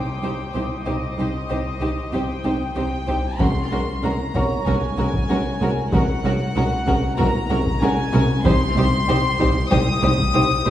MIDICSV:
0, 0, Header, 1, 10, 480
1, 0, Start_track
1, 0, Tempo, 631579
1, 663, Time_signature, 4, 2, 24, 8
1, 8132, End_track
2, 0, Start_track
2, 0, Title_t, "Violin section"
2, 0, Program_c, 0, 48
2, 0, Note_on_c, 0, 84, 27
2, 0, Note_on_c, 0, 86, 27
2, 0, Note_on_c, 0, 87, 28
2, 1832, Note_off_c, 0, 86, 0
2, 2311, Note_off_c, 0, 84, 0
2, 2312, Note_off_c, 0, 87, 0
2, 8132, End_track
3, 0, Start_track
3, 0, Title_t, "Felt piano"
3, 0, Program_c, 1, 0
3, 0, Control_c, 1, 64, 127
3, 0, Note_on_c, 1, 86, 24
3, 871, Note_off_c, 1, 86, 0
3, 2596, Control_c, 1, 64, 0
3, 2730, Control_c, 1, 64, 127
3, 3309, Note_on_c, 1, 73, 31
3, 3316, Note_on_c, 1, 85, 36
3, 4715, Note_off_c, 1, 73, 0
3, 4719, Note_off_c, 1, 85, 0
3, 5465, Note_on_c, 1, 82, 38
3, 6438, Control_c, 1, 64, 0
3, 6582, Control_c, 1, 64, 127
3, 6874, Note_off_c, 1, 82, 0
3, 8132, End_track
4, 0, Start_track
4, 0, Title_t, "Violin section"
4, 0, Program_c, 2, 48
4, 0, Note_on_c, 2, 79, 42
4, 663, Note_off_c, 2, 79, 0
4, 664, Note_on_c, 2, 75, 52
4, 1604, Note_off_c, 2, 75, 0
4, 1624, Note_on_c, 2, 79, 51
4, 2089, Note_off_c, 2, 79, 0
4, 2099, Note_on_c, 2, 79, 60
4, 2571, Note_off_c, 2, 79, 0
4, 2581, Note_on_c, 2, 84, 64
4, 3062, Note_off_c, 2, 84, 0
4, 3063, Note_on_c, 2, 82, 53
4, 3543, Note_off_c, 2, 82, 0
4, 3545, Note_on_c, 2, 80, 62
4, 4498, Note_on_c, 2, 78, 69
4, 4504, Note_off_c, 2, 80, 0
4, 5441, Note_off_c, 2, 78, 0
4, 5452, Note_on_c, 2, 82, 71
4, 5928, Note_off_c, 2, 82, 0
4, 5938, Note_on_c, 2, 80, 83
4, 6411, Note_on_c, 2, 84, 93
4, 6421, Note_off_c, 2, 80, 0
4, 7358, Note_off_c, 2, 84, 0
4, 7375, Note_on_c, 2, 87, 85
4, 8132, Note_off_c, 2, 87, 0
4, 8132, End_track
5, 0, Start_track
5, 0, Title_t, "Violin section"
5, 0, Program_c, 3, 48
5, 177, Note_on_c, 3, 67, 32
5, 177, Note_on_c, 3, 72, 36
5, 237, Note_off_c, 3, 72, 0
5, 238, Note_off_c, 3, 67, 0
5, 417, Note_on_c, 3, 67, 31
5, 420, Note_on_c, 3, 72, 31
5, 478, Note_off_c, 3, 67, 0
5, 481, Note_off_c, 3, 72, 0
5, 656, Note_on_c, 3, 72, 35
5, 657, Note_on_c, 3, 67, 34
5, 717, Note_off_c, 3, 72, 0
5, 718, Note_off_c, 3, 67, 0
5, 908, Note_on_c, 3, 67, 34
5, 910, Note_on_c, 3, 72, 33
5, 969, Note_off_c, 3, 67, 0
5, 971, Note_off_c, 3, 72, 0
5, 1138, Note_on_c, 3, 67, 33
5, 1139, Note_on_c, 3, 72, 37
5, 1199, Note_off_c, 3, 67, 0
5, 1200, Note_off_c, 3, 72, 0
5, 1381, Note_on_c, 3, 67, 35
5, 1383, Note_on_c, 3, 72, 33
5, 1442, Note_off_c, 3, 67, 0
5, 1443, Note_off_c, 3, 72, 0
5, 1621, Note_on_c, 3, 67, 40
5, 1623, Note_on_c, 3, 72, 41
5, 1682, Note_off_c, 3, 67, 0
5, 1683, Note_off_c, 3, 72, 0
5, 1860, Note_on_c, 3, 67, 35
5, 1861, Note_on_c, 3, 72, 32
5, 1921, Note_off_c, 3, 67, 0
5, 1922, Note_off_c, 3, 72, 0
5, 2094, Note_on_c, 3, 67, 37
5, 2095, Note_on_c, 3, 72, 36
5, 2155, Note_off_c, 3, 67, 0
5, 2156, Note_off_c, 3, 72, 0
5, 2337, Note_on_c, 3, 67, 36
5, 2337, Note_on_c, 3, 72, 34
5, 2398, Note_off_c, 3, 67, 0
5, 2398, Note_off_c, 3, 72, 0
5, 2576, Note_on_c, 3, 70, 39
5, 2578, Note_on_c, 3, 66, 42
5, 2637, Note_off_c, 3, 70, 0
5, 2639, Note_off_c, 3, 66, 0
5, 2824, Note_on_c, 3, 66, 39
5, 2825, Note_on_c, 3, 70, 38
5, 2885, Note_off_c, 3, 66, 0
5, 2886, Note_off_c, 3, 70, 0
5, 3063, Note_on_c, 3, 66, 40
5, 3066, Note_on_c, 3, 70, 41
5, 3124, Note_off_c, 3, 66, 0
5, 3127, Note_off_c, 3, 70, 0
5, 3308, Note_on_c, 3, 66, 40
5, 3310, Note_on_c, 3, 70, 38
5, 3368, Note_off_c, 3, 66, 0
5, 3371, Note_off_c, 3, 70, 0
5, 3545, Note_on_c, 3, 66, 45
5, 3548, Note_on_c, 3, 70, 48
5, 3606, Note_off_c, 3, 66, 0
5, 3609, Note_off_c, 3, 70, 0
5, 3784, Note_on_c, 3, 70, 41
5, 3785, Note_on_c, 3, 66, 43
5, 3845, Note_off_c, 3, 66, 0
5, 3845, Note_off_c, 3, 70, 0
5, 4026, Note_on_c, 3, 70, 45
5, 4029, Note_on_c, 3, 66, 48
5, 4086, Note_off_c, 3, 70, 0
5, 4090, Note_off_c, 3, 66, 0
5, 4270, Note_on_c, 3, 66, 42
5, 4271, Note_on_c, 3, 70, 44
5, 4331, Note_off_c, 3, 66, 0
5, 4332, Note_off_c, 3, 70, 0
5, 4506, Note_on_c, 3, 66, 46
5, 4507, Note_on_c, 3, 70, 47
5, 4567, Note_off_c, 3, 66, 0
5, 4568, Note_off_c, 3, 70, 0
5, 4749, Note_on_c, 3, 70, 45
5, 4752, Note_on_c, 3, 66, 49
5, 4810, Note_off_c, 3, 70, 0
5, 4813, Note_off_c, 3, 66, 0
5, 4987, Note_on_c, 3, 70, 49
5, 4989, Note_on_c, 3, 66, 49
5, 5048, Note_off_c, 3, 70, 0
5, 5049, Note_off_c, 3, 66, 0
5, 5223, Note_on_c, 3, 66, 49
5, 5225, Note_on_c, 3, 70, 47
5, 5284, Note_off_c, 3, 66, 0
5, 5286, Note_off_c, 3, 70, 0
5, 5456, Note_on_c, 3, 66, 54
5, 5457, Note_on_c, 3, 70, 56
5, 5517, Note_off_c, 3, 66, 0
5, 5517, Note_off_c, 3, 70, 0
5, 5699, Note_on_c, 3, 70, 50
5, 5701, Note_on_c, 3, 66, 51
5, 5760, Note_off_c, 3, 70, 0
5, 5762, Note_off_c, 3, 66, 0
5, 5944, Note_on_c, 3, 66, 57
5, 5944, Note_on_c, 3, 70, 52
5, 6005, Note_off_c, 3, 66, 0
5, 6005, Note_off_c, 3, 70, 0
5, 6178, Note_on_c, 3, 70, 52
5, 6180, Note_on_c, 3, 66, 50
5, 6239, Note_off_c, 3, 70, 0
5, 6241, Note_off_c, 3, 66, 0
5, 6422, Note_on_c, 3, 67, 52
5, 6423, Note_on_c, 3, 72, 57
5, 6482, Note_off_c, 3, 67, 0
5, 6483, Note_off_c, 3, 72, 0
5, 6662, Note_on_c, 3, 72, 51
5, 6666, Note_on_c, 3, 67, 53
5, 6723, Note_off_c, 3, 72, 0
5, 6727, Note_off_c, 3, 67, 0
5, 6903, Note_on_c, 3, 67, 57
5, 6907, Note_on_c, 3, 72, 58
5, 6964, Note_off_c, 3, 67, 0
5, 6968, Note_off_c, 3, 72, 0
5, 7144, Note_on_c, 3, 67, 54
5, 7146, Note_on_c, 3, 72, 56
5, 7205, Note_off_c, 3, 67, 0
5, 7207, Note_off_c, 3, 72, 0
5, 7381, Note_on_c, 3, 67, 63
5, 7382, Note_on_c, 3, 72, 62
5, 7442, Note_off_c, 3, 67, 0
5, 7442, Note_off_c, 3, 72, 0
5, 7617, Note_on_c, 3, 67, 57
5, 7622, Note_on_c, 3, 72, 55
5, 7678, Note_off_c, 3, 67, 0
5, 7683, Note_off_c, 3, 72, 0
5, 7858, Note_on_c, 3, 72, 55
5, 7859, Note_on_c, 3, 67, 56
5, 7919, Note_off_c, 3, 72, 0
5, 7920, Note_off_c, 3, 67, 0
5, 8105, Note_on_c, 3, 67, 53
5, 8105, Note_on_c, 3, 72, 53
5, 8132, Note_off_c, 3, 67, 0
5, 8132, Note_off_c, 3, 72, 0
5, 8132, End_track
6, 0, Start_track
6, 0, Title_t, "Viola section"
6, 0, Program_c, 4, 48
6, 174, Note_on_c, 4, 63, 34
6, 175, Note_on_c, 4, 60, 34
6, 235, Note_off_c, 4, 63, 0
6, 236, Note_off_c, 4, 60, 0
6, 412, Note_on_c, 4, 63, 31
6, 413, Note_on_c, 4, 60, 31
6, 473, Note_off_c, 4, 63, 0
6, 474, Note_off_c, 4, 60, 0
6, 656, Note_on_c, 4, 60, 36
6, 658, Note_on_c, 4, 63, 36
6, 717, Note_off_c, 4, 60, 0
6, 719, Note_off_c, 4, 63, 0
6, 896, Note_on_c, 4, 60, 34
6, 896, Note_on_c, 4, 63, 33
6, 956, Note_off_c, 4, 63, 0
6, 957, Note_off_c, 4, 60, 0
6, 1139, Note_on_c, 4, 60, 37
6, 1140, Note_on_c, 4, 63, 33
6, 1200, Note_off_c, 4, 60, 0
6, 1201, Note_off_c, 4, 63, 0
6, 1376, Note_on_c, 4, 63, 33
6, 1377, Note_on_c, 4, 60, 33
6, 1437, Note_off_c, 4, 63, 0
6, 1438, Note_off_c, 4, 60, 0
6, 1615, Note_on_c, 4, 60, 35
6, 1615, Note_on_c, 4, 63, 34
6, 1675, Note_off_c, 4, 60, 0
6, 1676, Note_off_c, 4, 63, 0
6, 1859, Note_on_c, 4, 60, 37
6, 1859, Note_on_c, 4, 63, 36
6, 1920, Note_off_c, 4, 60, 0
6, 1920, Note_off_c, 4, 63, 0
6, 2101, Note_on_c, 4, 63, 35
6, 2102, Note_on_c, 4, 60, 38
6, 2162, Note_off_c, 4, 63, 0
6, 2163, Note_off_c, 4, 60, 0
6, 2342, Note_on_c, 4, 60, 38
6, 2345, Note_on_c, 4, 63, 36
6, 2403, Note_off_c, 4, 60, 0
6, 2406, Note_off_c, 4, 63, 0
6, 2580, Note_on_c, 4, 61, 40
6, 2581, Note_on_c, 4, 56, 39
6, 2641, Note_off_c, 4, 56, 0
6, 2641, Note_off_c, 4, 61, 0
6, 2825, Note_on_c, 4, 61, 41
6, 2826, Note_on_c, 4, 56, 39
6, 2886, Note_off_c, 4, 56, 0
6, 2886, Note_off_c, 4, 61, 0
6, 3063, Note_on_c, 4, 56, 43
6, 3063, Note_on_c, 4, 61, 42
6, 3124, Note_off_c, 4, 56, 0
6, 3124, Note_off_c, 4, 61, 0
6, 3302, Note_on_c, 4, 56, 39
6, 3303, Note_on_c, 4, 61, 39
6, 3363, Note_off_c, 4, 56, 0
6, 3364, Note_off_c, 4, 61, 0
6, 3548, Note_on_c, 4, 56, 41
6, 3549, Note_on_c, 4, 61, 40
6, 3609, Note_off_c, 4, 56, 0
6, 3609, Note_off_c, 4, 61, 0
6, 3784, Note_on_c, 4, 61, 42
6, 3785, Note_on_c, 4, 56, 43
6, 3845, Note_off_c, 4, 61, 0
6, 3846, Note_off_c, 4, 56, 0
6, 4022, Note_on_c, 4, 61, 45
6, 4024, Note_on_c, 4, 56, 44
6, 4083, Note_off_c, 4, 61, 0
6, 4084, Note_off_c, 4, 56, 0
6, 4263, Note_on_c, 4, 56, 45
6, 4263, Note_on_c, 4, 61, 41
6, 4323, Note_off_c, 4, 56, 0
6, 4324, Note_off_c, 4, 61, 0
6, 4500, Note_on_c, 4, 56, 51
6, 4502, Note_on_c, 4, 61, 48
6, 4561, Note_off_c, 4, 56, 0
6, 4563, Note_off_c, 4, 61, 0
6, 4739, Note_on_c, 4, 61, 49
6, 4741, Note_on_c, 4, 56, 45
6, 4800, Note_off_c, 4, 61, 0
6, 4802, Note_off_c, 4, 56, 0
6, 4981, Note_on_c, 4, 56, 50
6, 4983, Note_on_c, 4, 61, 47
6, 5042, Note_off_c, 4, 56, 0
6, 5043, Note_off_c, 4, 61, 0
6, 5222, Note_on_c, 4, 56, 47
6, 5222, Note_on_c, 4, 61, 49
6, 5283, Note_off_c, 4, 56, 0
6, 5283, Note_off_c, 4, 61, 0
6, 5462, Note_on_c, 4, 61, 49
6, 5465, Note_on_c, 4, 56, 53
6, 5523, Note_off_c, 4, 61, 0
6, 5526, Note_off_c, 4, 56, 0
6, 5700, Note_on_c, 4, 56, 50
6, 5701, Note_on_c, 4, 61, 51
6, 5761, Note_off_c, 4, 56, 0
6, 5761, Note_off_c, 4, 61, 0
6, 5942, Note_on_c, 4, 61, 52
6, 5943, Note_on_c, 4, 56, 51
6, 6003, Note_off_c, 4, 61, 0
6, 6004, Note_off_c, 4, 56, 0
6, 6184, Note_on_c, 4, 61, 52
6, 6185, Note_on_c, 4, 56, 53
6, 6245, Note_off_c, 4, 56, 0
6, 6245, Note_off_c, 4, 61, 0
6, 6419, Note_on_c, 4, 55, 56
6, 6421, Note_on_c, 4, 63, 56
6, 6480, Note_off_c, 4, 55, 0
6, 6482, Note_off_c, 4, 63, 0
6, 6662, Note_on_c, 4, 55, 53
6, 6662, Note_on_c, 4, 63, 53
6, 6723, Note_off_c, 4, 55, 0
6, 6723, Note_off_c, 4, 63, 0
6, 6901, Note_on_c, 4, 55, 57
6, 6904, Note_on_c, 4, 63, 58
6, 6962, Note_off_c, 4, 55, 0
6, 6965, Note_off_c, 4, 63, 0
6, 7138, Note_on_c, 4, 63, 55
6, 7141, Note_on_c, 4, 55, 54
6, 7199, Note_off_c, 4, 63, 0
6, 7202, Note_off_c, 4, 55, 0
6, 7379, Note_on_c, 4, 55, 55
6, 7379, Note_on_c, 4, 63, 56
6, 7440, Note_off_c, 4, 55, 0
6, 7440, Note_off_c, 4, 63, 0
6, 7615, Note_on_c, 4, 55, 58
6, 7616, Note_on_c, 4, 63, 54
6, 7676, Note_off_c, 4, 55, 0
6, 7676, Note_off_c, 4, 63, 0
6, 7857, Note_on_c, 4, 63, 54
6, 7859, Note_on_c, 4, 55, 57
6, 7918, Note_off_c, 4, 63, 0
6, 7920, Note_off_c, 4, 55, 0
6, 8099, Note_on_c, 4, 55, 53
6, 8100, Note_on_c, 4, 63, 52
6, 8132, Note_off_c, 4, 55, 0
6, 8132, Note_off_c, 4, 63, 0
6, 8132, End_track
7, 0, Start_track
7, 0, Title_t, "Cello section"
7, 0, Program_c, 5, 48
7, 178, Note_on_c, 5, 36, 38
7, 239, Note_off_c, 5, 36, 0
7, 418, Note_on_c, 5, 36, 39
7, 479, Note_off_c, 5, 36, 0
7, 653, Note_on_c, 5, 36, 40
7, 714, Note_off_c, 5, 36, 0
7, 897, Note_on_c, 5, 36, 33
7, 958, Note_off_c, 5, 36, 0
7, 1137, Note_on_c, 5, 36, 34
7, 1198, Note_off_c, 5, 36, 0
7, 1375, Note_on_c, 5, 36, 37
7, 1436, Note_off_c, 5, 36, 0
7, 1616, Note_on_c, 5, 36, 45
7, 1677, Note_off_c, 5, 36, 0
7, 1857, Note_on_c, 5, 36, 36
7, 1918, Note_off_c, 5, 36, 0
7, 2100, Note_on_c, 5, 36, 43
7, 2161, Note_off_c, 5, 36, 0
7, 2338, Note_on_c, 5, 36, 45
7, 2399, Note_off_c, 5, 36, 0
7, 2582, Note_on_c, 5, 36, 44
7, 2643, Note_off_c, 5, 36, 0
7, 2821, Note_on_c, 5, 36, 41
7, 2882, Note_off_c, 5, 36, 0
7, 3057, Note_on_c, 5, 36, 41
7, 3118, Note_off_c, 5, 36, 0
7, 3300, Note_on_c, 5, 36, 43
7, 3361, Note_off_c, 5, 36, 0
7, 3539, Note_on_c, 5, 36, 50
7, 3600, Note_off_c, 5, 36, 0
7, 3779, Note_on_c, 5, 36, 42
7, 3840, Note_off_c, 5, 36, 0
7, 4019, Note_on_c, 5, 36, 46
7, 4080, Note_off_c, 5, 36, 0
7, 4257, Note_on_c, 5, 36, 49
7, 4318, Note_off_c, 5, 36, 0
7, 4497, Note_on_c, 5, 36, 56
7, 4557, Note_off_c, 5, 36, 0
7, 4742, Note_on_c, 5, 36, 48
7, 4803, Note_off_c, 5, 36, 0
7, 4981, Note_on_c, 5, 36, 53
7, 5041, Note_off_c, 5, 36, 0
7, 5220, Note_on_c, 5, 36, 54
7, 5281, Note_off_c, 5, 36, 0
7, 5462, Note_on_c, 5, 36, 62
7, 5522, Note_off_c, 5, 36, 0
7, 5699, Note_on_c, 5, 36, 52
7, 5760, Note_off_c, 5, 36, 0
7, 5939, Note_on_c, 5, 36, 62
7, 6000, Note_off_c, 5, 36, 0
7, 6180, Note_on_c, 5, 36, 58
7, 6240, Note_off_c, 5, 36, 0
7, 6415, Note_on_c, 5, 36, 64
7, 6476, Note_off_c, 5, 36, 0
7, 6655, Note_on_c, 5, 36, 62
7, 6716, Note_off_c, 5, 36, 0
7, 6897, Note_on_c, 5, 36, 57
7, 6958, Note_off_c, 5, 36, 0
7, 7138, Note_on_c, 5, 36, 60
7, 7199, Note_off_c, 5, 36, 0
7, 7383, Note_on_c, 5, 36, 64
7, 7444, Note_off_c, 5, 36, 0
7, 7623, Note_on_c, 5, 36, 58
7, 7684, Note_off_c, 5, 36, 0
7, 7864, Note_on_c, 5, 36, 63
7, 7925, Note_off_c, 5, 36, 0
7, 8104, Note_on_c, 5, 36, 60
7, 8132, Note_off_c, 5, 36, 0
7, 8132, End_track
8, 0, Start_track
8, 0, Title_t, "Double bass section"
8, 0, Program_c, 6, 48
8, 179, Note_on_c, 6, 36, 37
8, 239, Note_off_c, 6, 36, 0
8, 419, Note_on_c, 6, 36, 35
8, 480, Note_off_c, 6, 36, 0
8, 659, Note_on_c, 6, 36, 44
8, 719, Note_off_c, 6, 36, 0
8, 900, Note_on_c, 6, 36, 39
8, 961, Note_off_c, 6, 36, 0
8, 1143, Note_on_c, 6, 36, 37
8, 1204, Note_off_c, 6, 36, 0
8, 1381, Note_on_c, 6, 36, 36
8, 1441, Note_off_c, 6, 36, 0
8, 1622, Note_on_c, 6, 36, 40
8, 1683, Note_off_c, 6, 36, 0
8, 1867, Note_on_c, 6, 36, 39
8, 1928, Note_off_c, 6, 36, 0
8, 2105, Note_on_c, 6, 36, 41
8, 2166, Note_off_c, 6, 36, 0
8, 2346, Note_on_c, 6, 36, 42
8, 2406, Note_off_c, 6, 36, 0
8, 2581, Note_on_c, 6, 36, 47
8, 2642, Note_off_c, 6, 36, 0
8, 2826, Note_on_c, 6, 36, 45
8, 2886, Note_off_c, 6, 36, 0
8, 3066, Note_on_c, 6, 36, 44
8, 3127, Note_off_c, 6, 36, 0
8, 3307, Note_on_c, 6, 36, 43
8, 3367, Note_off_c, 6, 36, 0
8, 3547, Note_on_c, 6, 36, 50
8, 3608, Note_off_c, 6, 36, 0
8, 3786, Note_on_c, 6, 36, 48
8, 3847, Note_off_c, 6, 36, 0
8, 4026, Note_on_c, 6, 36, 52
8, 4087, Note_off_c, 6, 36, 0
8, 4265, Note_on_c, 6, 36, 48
8, 4326, Note_off_c, 6, 36, 0
8, 4503, Note_on_c, 6, 36, 58
8, 4564, Note_off_c, 6, 36, 0
8, 4742, Note_on_c, 6, 36, 53
8, 4803, Note_off_c, 6, 36, 0
8, 4983, Note_on_c, 6, 36, 55
8, 5044, Note_off_c, 6, 36, 0
8, 5222, Note_on_c, 6, 36, 48
8, 5283, Note_off_c, 6, 36, 0
8, 5463, Note_on_c, 6, 36, 60
8, 5524, Note_off_c, 6, 36, 0
8, 5701, Note_on_c, 6, 36, 57
8, 5762, Note_off_c, 6, 36, 0
8, 5940, Note_on_c, 6, 36, 58
8, 6001, Note_off_c, 6, 36, 0
8, 6178, Note_on_c, 6, 36, 59
8, 6239, Note_off_c, 6, 36, 0
8, 6419, Note_on_c, 6, 36, 67
8, 6480, Note_off_c, 6, 36, 0
8, 6662, Note_on_c, 6, 36, 57
8, 6723, Note_off_c, 6, 36, 0
8, 6903, Note_on_c, 6, 36, 60
8, 6964, Note_off_c, 6, 36, 0
8, 7143, Note_on_c, 6, 36, 58
8, 7204, Note_off_c, 6, 36, 0
8, 7383, Note_on_c, 6, 36, 67
8, 7444, Note_off_c, 6, 36, 0
8, 7624, Note_on_c, 6, 36, 64
8, 7685, Note_off_c, 6, 36, 0
8, 7867, Note_on_c, 6, 36, 60
8, 7928, Note_off_c, 6, 36, 0
8, 8107, Note_on_c, 6, 36, 59
8, 8132, Note_off_c, 6, 36, 0
8, 8132, End_track
9, 0, Start_track
9, 0, Title_t, "Impact"
9, 0, Program_c, 7, 103
9, 0, Note_on_c, 7, 60, 44
9, 660, Note_off_c, 7, 60, 0
9, 8132, End_track
10, 0, Start_track
10, 0, Title_t, "Taiko and cinematic ensemble drums"
10, 2584, Note_on_c, 9, 41, 73
10, 2660, Note_off_c, 9, 41, 0
10, 3304, Note_on_c, 9, 41, 62
10, 3380, Note_off_c, 9, 41, 0
10, 3544, Note_on_c, 9, 41, 64
10, 3620, Note_off_c, 9, 41, 0
10, 3904, Note_on_c, 9, 41, 65
10, 3980, Note_off_c, 9, 41, 0
10, 4503, Note_on_c, 9, 41, 77
10, 4579, Note_off_c, 9, 41, 0
10, 5221, Note_on_c, 9, 41, 63
10, 5297, Note_off_c, 9, 41, 0
10, 5464, Note_on_c, 9, 41, 67
10, 5540, Note_off_c, 9, 41, 0
10, 5823, Note_on_c, 9, 41, 69
10, 5899, Note_off_c, 9, 41, 0
10, 6423, Note_on_c, 9, 41, 83
10, 6499, Note_off_c, 9, 41, 0
10, 7147, Note_on_c, 9, 41, 63
10, 7223, Note_off_c, 9, 41, 0
10, 7387, Note_on_c, 9, 41, 72
10, 7463, Note_off_c, 9, 41, 0
10, 7745, Note_on_c, 9, 41, 66
10, 7821, Note_off_c, 9, 41, 0
10, 8132, End_track
0, 0, End_of_file